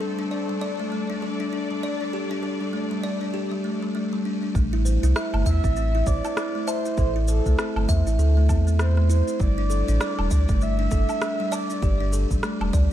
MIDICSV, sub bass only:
0, 0, Header, 1, 2, 480
1, 0, Start_track
1, 0, Key_signature, 0, "minor"
1, 0, Tempo, 606061
1, 1685, Time_signature, 4, 2, 24, 8
1, 10240, End_track
2, 0, Start_track
2, 0, Title_t, "Sub bass"
2, 0, Program_c, 0, 38
2, 3603, Note_on_c, 0, 33, 102
2, 3945, Note_off_c, 0, 33, 0
2, 3983, Note_on_c, 0, 36, 107
2, 4065, Note_off_c, 0, 36, 0
2, 4224, Note_on_c, 0, 31, 92
2, 4305, Note_off_c, 0, 31, 0
2, 4323, Note_on_c, 0, 40, 90
2, 4441, Note_off_c, 0, 40, 0
2, 4467, Note_on_c, 0, 33, 89
2, 4776, Note_off_c, 0, 33, 0
2, 4804, Note_on_c, 0, 33, 104
2, 4921, Note_off_c, 0, 33, 0
2, 5524, Note_on_c, 0, 33, 94
2, 5866, Note_off_c, 0, 33, 0
2, 5909, Note_on_c, 0, 36, 103
2, 5988, Note_off_c, 0, 36, 0
2, 6144, Note_on_c, 0, 31, 94
2, 6226, Note_off_c, 0, 31, 0
2, 6246, Note_on_c, 0, 40, 99
2, 6362, Note_off_c, 0, 40, 0
2, 6385, Note_on_c, 0, 33, 88
2, 6479, Note_off_c, 0, 33, 0
2, 6484, Note_on_c, 0, 38, 115
2, 6723, Note_on_c, 0, 40, 91
2, 6735, Note_off_c, 0, 38, 0
2, 7305, Note_off_c, 0, 40, 0
2, 7445, Note_on_c, 0, 31, 93
2, 7786, Note_off_c, 0, 31, 0
2, 7827, Note_on_c, 0, 33, 103
2, 7907, Note_off_c, 0, 33, 0
2, 8067, Note_on_c, 0, 28, 93
2, 8147, Note_off_c, 0, 28, 0
2, 8165, Note_on_c, 0, 38, 101
2, 8282, Note_off_c, 0, 38, 0
2, 8306, Note_on_c, 0, 31, 91
2, 8616, Note_off_c, 0, 31, 0
2, 8643, Note_on_c, 0, 31, 99
2, 8761, Note_off_c, 0, 31, 0
2, 9363, Note_on_c, 0, 31, 107
2, 9705, Note_off_c, 0, 31, 0
2, 9747, Note_on_c, 0, 33, 110
2, 9827, Note_off_c, 0, 33, 0
2, 9982, Note_on_c, 0, 28, 94
2, 10064, Note_off_c, 0, 28, 0
2, 10085, Note_on_c, 0, 38, 97
2, 10202, Note_off_c, 0, 38, 0
2, 10240, End_track
0, 0, End_of_file